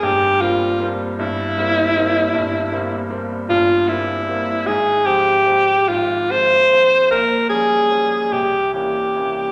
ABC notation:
X:1
M:12/8
L:1/8
Q:3/8=51
K:Cphr
V:1 name="Alto saxophone"
G F z =E4- E z F E2 | A G2 F c2 B A2 G G2 |]
V:2 name="Grand piano" clef=bass
[G,,,G,,] [G,B,C] [G,B,C] [G,,,G,,] [G,B,C] [G,B,C] [G,,,G,,] [G,B,C] [G,B,C] [G,,,G,,] [G,B,C] [G,B,C] | [A,,,A,,] [F,A,C] [F,A,C] [A,,,A,,] [F,A,C] [F,A,C] [B,,,B,,] [F,G,D] [F,G,D] [C,,C,] [=E,B,D] [E,B,D] |]